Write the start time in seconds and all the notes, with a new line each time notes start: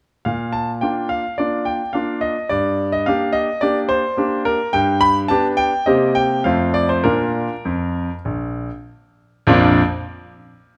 0.25 A#2 F5
0.53 A5
0.81 A#3 D4 F4 G5
1.09 F5
1.38 A#3 D4 F4 D5
1.65 G5
1.93 A#3 D4 F4 F5
2.21 D#5
2.49 G2 D5
2.92 D#5
3.06 A#3 D4 G4 F5
3.33 D#5
3.61 A#3 D4 G4 D5
3.89 C5
4.17 A#3 D4 G4
4.45 A#4
4.73 G2 G5
5.01 B5
5.28 B3 D4 G4 A5
5.57 G5
5.86 C3 A#3 C4 G4 D#5
6.15 G5
6.44 F2 A3 C4 F4 F5
6.74 D5
6.89 C5
7.04 A#2 D4 F4 A#4
7.65 F2
8.25 A#1
9.47 A#1 F2 F3 A#3 D4 F4